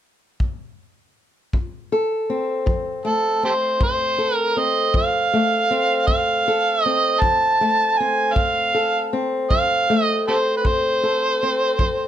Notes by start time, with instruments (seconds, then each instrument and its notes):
0.40 kick
1.53 steel-string acoustic guitar F2, kick
1.92 steel-string acoustic guitar A4
2.30 steel-string acoustic guitar C4
2.66 steel-string acoustic guitar F3, kick
3.05 steel-string acoustic guitar A3, harmonica A4
3.43 steel-string acoustic guitar C4, harmonica G4 A4 C5
3.81 steel-string acoustic guitar F2, harmonica C5, kick
4.18 steel-string acoustic guitar A4
4.35 harmonica A#4
4.57 steel-string acoustic guitar C4, harmonica D#5
4.94 steel-string acoustic guitar F3, harmonica F5, kick
5.34 steel-string acoustic guitar A3
5.71 steel-string acoustic guitar C4
6.07 steel-string acoustic guitar F2, harmonica F5, kick
6.48 steel-string acoustic guitar A4
6.83 steel-string acoustic guitar C4, harmonica D#5
7.21 steel-string acoustic guitar F3, harmonica A5, kick
7.61 steel-string acoustic guitar A3
7.97 steel-string acoustic guitar C4, harmonica G#5
8.34 steel-string acoustic guitar F2, harmonica F5, kick
8.74 steel-string acoustic guitar A4
9.13 steel-string acoustic guitar C4
9.51 steel-string acoustic guitar F3, harmonica F5, kick
9.90 steel-string acoustic guitar A3
10.04 harmonica D#5
10.28 steel-string acoustic guitar C4, harmonica G4 A4 C5
10.57 harmonica B4
10.65 steel-string acoustic guitar F2, harmonica C5, kick
11.03 steel-string acoustic guitar A4
11.43 steel-string acoustic guitar C4
11.79 steel-string acoustic guitar F3, kick